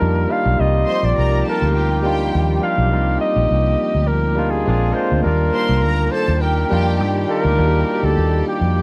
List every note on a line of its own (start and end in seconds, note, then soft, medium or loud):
0.00 0.25 F2 medium
0.00 0.55 D#3 medium
0.00 0.29 G3 medium
0.00 0.26 A#3 medium
0.00 0.29 A#3 medium
0.00 0.56 A#3 medium
0.00 0.30 D4 medium
0.00 0.26 D#4 medium
0.00 0.31 D#4 medium
0.00 0.14 F4 medium
0.00 0.55 G4 medium
0.00 0.61 G4 medium
0.00 0.33 A#4 loud
0.00 0.26 A5 medium
0.29 0.50 G3 medium
0.29 0.51 A#3 medium
0.29 0.51 D4 medium
0.29 0.52 D#4 medium
0.29 0.52 F4 medium
0.29 0.62 F5 loud
0.46 0.57 B1 medium
0.58 0.83 C2 loud
0.58 4.64 F3 medium
0.58 1.42 G3 medium
0.58 4.34 G3 medium
0.58 1.42 A#3 medium
0.58 8.82 A#3 medium
0.58 1.43 C4 medium
0.58 4.34 D#4 medium
0.58 1.43 D#4 medium
0.58 2.90 F4 medium
0.58 1.43 F4 medium
0.58 4.34 G4 medium
0.58 1.07 D#5 loud
0.88 1.12 C5 medium
0.88 1.12 C6 medium
1.03 1.15 A#1 medium
1.03 1.48 D5 loud
1.18 1.41 C2 medium
1.18 1.41 A#4 medium
1.18 1.41 A#5 loud
1.46 1.70 A4 medium
1.46 2.34 A#4 medium
1.46 1.70 A5 medium
1.62 2.31 D2 medium
1.75 1.99 G4 medium
1.75 1.99 G5 medium
2.03 2.46 G3 medium
2.03 2.46 A#3 medium
2.03 2.47 D4 medium
2.03 2.47 D#4 medium
2.03 2.47 F4 medium
2.03 2.60 G4 loud
2.03 2.60 G5 loud
2.35 2.58 D#2 medium
2.61 2.83 G3 medium
2.61 2.83 A#3 medium
2.61 2.84 D4 medium
2.61 2.84 D#4 medium
2.61 2.85 F4 medium
2.61 3.18 F5 loud
2.78 2.93 B1 medium
2.91 3.16 C2 loud
2.91 3.75 G3 medium
2.91 3.75 A#3 medium
2.91 3.75 C4 medium
2.91 3.76 D#4 medium
2.91 3.77 F4 medium
2.91 4.65 G4 medium
3.21 4.09 D#5 loud
3.36 3.48 A#1 loud
3.51 3.74 C2 loud
3.95 4.64 D2 medium
4.08 4.53 A#4 loud
4.35 4.66 G3 medium
4.35 4.65 A#3 medium
4.35 4.67 D4 medium
4.35 4.67 D#4 medium
4.35 4.68 F4 medium
4.51 4.96 G#4 loud
4.65 4.91 A#1 loud
4.65 5.25 D3 medium
4.65 4.89 G#3 medium
4.65 5.25 G#3 medium
4.65 4.90 A#3 medium
4.65 4.91 C4 medium
4.65 4.96 D4 medium
4.65 4.91 D4 medium
4.65 5.25 F4 medium
4.65 4.96 F4 medium
4.65 4.96 G#4 medium
4.69 4.91 F4 medium
4.94 5.16 G#3 medium
4.94 5.17 A#3 medium
4.94 5.17 C4 medium
4.94 5.18 D4 medium
4.94 5.18 F4 medium
4.94 5.22 C5 loud
5.12 5.23 D2 loud
5.23 5.49 D#2 loud
5.23 8.82 D#3 medium
5.23 6.08 G3 medium
5.23 6.08 A#3 medium
5.23 6.08 D4 medium
5.23 6.09 D#4 medium
5.23 8.82 G4 medium
5.23 6.13 A#4 loud
5.23 8.82 D5 medium
5.27 6.09 F4 medium
5.53 5.77 C5 medium
5.53 5.77 C6 medium
5.69 5.84 C2 medium
5.83 6.08 D2 medium
5.83 6.07 A#4 medium
5.83 6.07 A#5 loud
6.12 6.36 A4 medium
6.12 6.43 C5 medium
6.12 6.36 A5 loud
6.28 6.63 D#2 medium
6.40 8.82 G3 medium
6.40 8.82 D#4 medium
6.40 6.64 G4 medium
6.40 8.82 G4 medium
6.40 7.02 A#4 medium
6.40 6.64 G5 medium
6.69 7.01 F2 medium
6.69 7.12 G3 medium
6.69 7.12 A#3 medium
6.69 7.13 D4 medium
6.69 7.13 D#4 medium
6.69 7.25 G4 loud
6.69 7.25 G5 loud
6.73 7.14 F4 medium
7.01 7.24 G2 medium
7.27 7.49 G3 medium
7.27 7.50 A#3 medium
7.27 7.50 D4 medium
7.27 7.50 D#4 medium
7.27 7.51 F4 medium
7.31 8.07 A#4 loud
7.45 7.56 D2 medium
7.56 7.82 D#2 loud
7.56 8.41 G3 medium
7.56 8.41 A#3 medium
7.56 8.41 D4 medium
7.56 8.42 D#4 medium
7.56 7.66 F#4 medium
7.66 8.46 G4 medium
8.03 8.15 D2 medium
8.03 8.47 A4 loud
8.18 8.41 D#2 medium
8.48 8.82 G4 medium
8.61 8.82 F2 medium